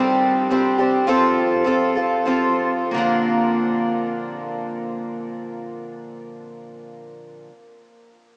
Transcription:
0, 0, Header, 1, 2, 480
1, 0, Start_track
1, 0, Key_signature, -2, "major"
1, 0, Tempo, 545455
1, 935, Time_signature, 3, 2, 24, 8
1, 935, Tempo, 601805
1, 1895, Tempo, 669643
1, 2375, Tempo, 700117
1, 6100, End_track
2, 0, Start_track
2, 0, Title_t, "Twelve-string acoustic guitar"
2, 0, Program_c, 0, 25
2, 0, Note_on_c, 0, 55, 54
2, 0, Note_on_c, 0, 60, 56
2, 0, Note_on_c, 0, 62, 50
2, 0, Note_on_c, 0, 67, 63
2, 433, Note_off_c, 0, 55, 0
2, 438, Note_off_c, 0, 60, 0
2, 443, Note_off_c, 0, 62, 0
2, 443, Note_on_c, 0, 55, 50
2, 449, Note_on_c, 0, 60, 58
2, 452, Note_off_c, 0, 67, 0
2, 454, Note_on_c, 0, 62, 61
2, 462, Note_on_c, 0, 67, 55
2, 680, Note_off_c, 0, 67, 0
2, 686, Note_off_c, 0, 55, 0
2, 689, Note_off_c, 0, 60, 0
2, 689, Note_off_c, 0, 62, 0
2, 690, Note_on_c, 0, 67, 41
2, 700, Note_on_c, 0, 62, 42
2, 710, Note_on_c, 0, 60, 39
2, 712, Note_on_c, 0, 55, 34
2, 936, Note_off_c, 0, 67, 0
2, 937, Note_off_c, 0, 55, 0
2, 940, Note_off_c, 0, 60, 0
2, 940, Note_off_c, 0, 62, 0
2, 940, Note_on_c, 0, 53, 68
2, 947, Note_on_c, 0, 65, 71
2, 949, Note_on_c, 0, 60, 62
2, 956, Note_on_c, 0, 69, 70
2, 1389, Note_off_c, 0, 53, 0
2, 1399, Note_on_c, 0, 53, 49
2, 1400, Note_off_c, 0, 60, 0
2, 1406, Note_off_c, 0, 65, 0
2, 1410, Note_off_c, 0, 69, 0
2, 1410, Note_on_c, 0, 60, 49
2, 1418, Note_on_c, 0, 65, 59
2, 1423, Note_on_c, 0, 69, 55
2, 1636, Note_off_c, 0, 69, 0
2, 1642, Note_off_c, 0, 53, 0
2, 1646, Note_on_c, 0, 69, 45
2, 1648, Note_off_c, 0, 60, 0
2, 1648, Note_off_c, 0, 65, 0
2, 1658, Note_on_c, 0, 65, 39
2, 1668, Note_on_c, 0, 60, 35
2, 1885, Note_off_c, 0, 60, 0
2, 1886, Note_on_c, 0, 53, 50
2, 1892, Note_off_c, 0, 65, 0
2, 1894, Note_on_c, 0, 60, 48
2, 1896, Note_off_c, 0, 69, 0
2, 1901, Note_on_c, 0, 65, 55
2, 1905, Note_on_c, 0, 69, 55
2, 2358, Note_on_c, 0, 46, 57
2, 2371, Note_off_c, 0, 53, 0
2, 2375, Note_off_c, 0, 60, 0
2, 2378, Note_off_c, 0, 65, 0
2, 2378, Note_on_c, 0, 50, 56
2, 2380, Note_off_c, 0, 69, 0
2, 2381, Note_on_c, 0, 53, 59
2, 2394, Note_on_c, 0, 58, 62
2, 2403, Note_on_c, 0, 62, 66
2, 2409, Note_on_c, 0, 70, 64
2, 5480, Note_off_c, 0, 46, 0
2, 5499, Note_off_c, 0, 50, 0
2, 5502, Note_off_c, 0, 53, 0
2, 5515, Note_off_c, 0, 58, 0
2, 5525, Note_off_c, 0, 62, 0
2, 5531, Note_off_c, 0, 70, 0
2, 6100, End_track
0, 0, End_of_file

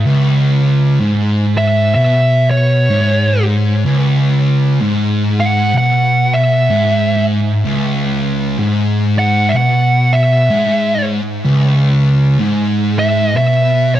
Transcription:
0, 0, Header, 1, 3, 480
1, 0, Start_track
1, 0, Key_signature, 4, "minor"
1, 0, Tempo, 949367
1, 29, Time_signature, 4, 2, 24, 8
1, 7077, End_track
2, 0, Start_track
2, 0, Title_t, "Lead electric guitar"
2, 0, Program_c, 0, 29
2, 797, Note_on_c, 0, 76, 92
2, 974, Note_off_c, 0, 76, 0
2, 983, Note_on_c, 0, 76, 116
2, 1266, Note_off_c, 0, 76, 0
2, 1268, Note_on_c, 0, 73, 82
2, 1733, Note_off_c, 0, 73, 0
2, 2731, Note_on_c, 0, 78, 101
2, 2902, Note_off_c, 0, 78, 0
2, 2920, Note_on_c, 0, 78, 95
2, 3203, Note_on_c, 0, 76, 83
2, 3215, Note_off_c, 0, 78, 0
2, 3662, Note_off_c, 0, 76, 0
2, 4646, Note_on_c, 0, 78, 87
2, 4798, Note_on_c, 0, 76, 84
2, 4809, Note_off_c, 0, 78, 0
2, 4828, Note_off_c, 0, 76, 0
2, 4833, Note_on_c, 0, 78, 110
2, 5121, Note_on_c, 0, 76, 92
2, 5132, Note_off_c, 0, 78, 0
2, 5581, Note_off_c, 0, 76, 0
2, 6567, Note_on_c, 0, 76, 91
2, 6753, Note_off_c, 0, 76, 0
2, 6759, Note_on_c, 0, 76, 107
2, 7053, Note_off_c, 0, 76, 0
2, 7055, Note_on_c, 0, 73, 70
2, 7077, Note_off_c, 0, 73, 0
2, 7077, End_track
3, 0, Start_track
3, 0, Title_t, "Distorted electric guitar"
3, 0, Program_c, 1, 30
3, 27, Note_on_c, 1, 37, 93
3, 502, Note_off_c, 1, 37, 0
3, 507, Note_on_c, 1, 44, 95
3, 982, Note_off_c, 1, 44, 0
3, 988, Note_on_c, 1, 47, 108
3, 1462, Note_off_c, 1, 47, 0
3, 1467, Note_on_c, 1, 44, 105
3, 1942, Note_off_c, 1, 44, 0
3, 1949, Note_on_c, 1, 37, 107
3, 2423, Note_off_c, 1, 37, 0
3, 2432, Note_on_c, 1, 44, 101
3, 2903, Note_off_c, 1, 44, 0
3, 2905, Note_on_c, 1, 47, 117
3, 3382, Note_off_c, 1, 47, 0
3, 3388, Note_on_c, 1, 44, 104
3, 3863, Note_off_c, 1, 44, 0
3, 3868, Note_on_c, 1, 37, 113
3, 4342, Note_off_c, 1, 37, 0
3, 4344, Note_on_c, 1, 44, 98
3, 4822, Note_off_c, 1, 44, 0
3, 4828, Note_on_c, 1, 47, 107
3, 5304, Note_off_c, 1, 47, 0
3, 5308, Note_on_c, 1, 44, 101
3, 5784, Note_off_c, 1, 44, 0
3, 5790, Note_on_c, 1, 37, 108
3, 6265, Note_off_c, 1, 37, 0
3, 6271, Note_on_c, 1, 44, 92
3, 6745, Note_off_c, 1, 44, 0
3, 6750, Note_on_c, 1, 47, 101
3, 7077, Note_off_c, 1, 47, 0
3, 7077, End_track
0, 0, End_of_file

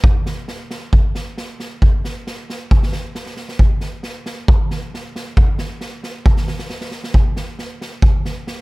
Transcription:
0, 0, Header, 1, 2, 480
1, 0, Start_track
1, 0, Tempo, 443787
1, 42, Time_signature, 2, 2, 24, 8
1, 9316, End_track
2, 0, Start_track
2, 0, Title_t, "Drums"
2, 40, Note_on_c, 9, 36, 108
2, 148, Note_off_c, 9, 36, 0
2, 283, Note_on_c, 9, 38, 28
2, 391, Note_off_c, 9, 38, 0
2, 520, Note_on_c, 9, 38, 28
2, 628, Note_off_c, 9, 38, 0
2, 763, Note_on_c, 9, 38, 28
2, 871, Note_off_c, 9, 38, 0
2, 1003, Note_on_c, 9, 36, 90
2, 1111, Note_off_c, 9, 36, 0
2, 1244, Note_on_c, 9, 38, 26
2, 1352, Note_off_c, 9, 38, 0
2, 1488, Note_on_c, 9, 38, 29
2, 1596, Note_off_c, 9, 38, 0
2, 1728, Note_on_c, 9, 38, 22
2, 1836, Note_off_c, 9, 38, 0
2, 1968, Note_on_c, 9, 36, 84
2, 2076, Note_off_c, 9, 36, 0
2, 2213, Note_on_c, 9, 38, 23
2, 2321, Note_off_c, 9, 38, 0
2, 2456, Note_on_c, 9, 38, 25
2, 2564, Note_off_c, 9, 38, 0
2, 2700, Note_on_c, 9, 38, 23
2, 2808, Note_off_c, 9, 38, 0
2, 2933, Note_on_c, 9, 36, 92
2, 3041, Note_off_c, 9, 36, 0
2, 3059, Note_on_c, 9, 38, 21
2, 3163, Note_off_c, 9, 38, 0
2, 3163, Note_on_c, 9, 38, 25
2, 3271, Note_off_c, 9, 38, 0
2, 3409, Note_on_c, 9, 38, 26
2, 3517, Note_off_c, 9, 38, 0
2, 3525, Note_on_c, 9, 38, 20
2, 3633, Note_off_c, 9, 38, 0
2, 3640, Note_on_c, 9, 38, 19
2, 3749, Note_off_c, 9, 38, 0
2, 3771, Note_on_c, 9, 38, 19
2, 3879, Note_off_c, 9, 38, 0
2, 3886, Note_on_c, 9, 36, 88
2, 3994, Note_off_c, 9, 36, 0
2, 4117, Note_on_c, 9, 38, 20
2, 4225, Note_off_c, 9, 38, 0
2, 4360, Note_on_c, 9, 38, 25
2, 4468, Note_off_c, 9, 38, 0
2, 4606, Note_on_c, 9, 38, 28
2, 4714, Note_off_c, 9, 38, 0
2, 4849, Note_on_c, 9, 36, 116
2, 4957, Note_off_c, 9, 36, 0
2, 5092, Note_on_c, 9, 38, 25
2, 5200, Note_off_c, 9, 38, 0
2, 5347, Note_on_c, 9, 38, 22
2, 5455, Note_off_c, 9, 38, 0
2, 5577, Note_on_c, 9, 38, 28
2, 5686, Note_off_c, 9, 38, 0
2, 5808, Note_on_c, 9, 36, 92
2, 5916, Note_off_c, 9, 36, 0
2, 6040, Note_on_c, 9, 38, 30
2, 6148, Note_off_c, 9, 38, 0
2, 6281, Note_on_c, 9, 38, 26
2, 6390, Note_off_c, 9, 38, 0
2, 6527, Note_on_c, 9, 38, 25
2, 6635, Note_off_c, 9, 38, 0
2, 6767, Note_on_c, 9, 36, 98
2, 6875, Note_off_c, 9, 36, 0
2, 6889, Note_on_c, 9, 38, 22
2, 6997, Note_off_c, 9, 38, 0
2, 7005, Note_on_c, 9, 38, 27
2, 7114, Note_off_c, 9, 38, 0
2, 7127, Note_on_c, 9, 38, 30
2, 7235, Note_off_c, 9, 38, 0
2, 7244, Note_on_c, 9, 38, 27
2, 7352, Note_off_c, 9, 38, 0
2, 7366, Note_on_c, 9, 38, 26
2, 7475, Note_off_c, 9, 38, 0
2, 7477, Note_on_c, 9, 38, 23
2, 7585, Note_off_c, 9, 38, 0
2, 7611, Note_on_c, 9, 38, 25
2, 7719, Note_off_c, 9, 38, 0
2, 7725, Note_on_c, 9, 36, 90
2, 7833, Note_off_c, 9, 36, 0
2, 7965, Note_on_c, 9, 38, 26
2, 8073, Note_off_c, 9, 38, 0
2, 8205, Note_on_c, 9, 38, 24
2, 8314, Note_off_c, 9, 38, 0
2, 8452, Note_on_c, 9, 38, 27
2, 8560, Note_off_c, 9, 38, 0
2, 8679, Note_on_c, 9, 36, 96
2, 8787, Note_off_c, 9, 36, 0
2, 8925, Note_on_c, 9, 38, 21
2, 9033, Note_off_c, 9, 38, 0
2, 9165, Note_on_c, 9, 38, 29
2, 9273, Note_off_c, 9, 38, 0
2, 9316, End_track
0, 0, End_of_file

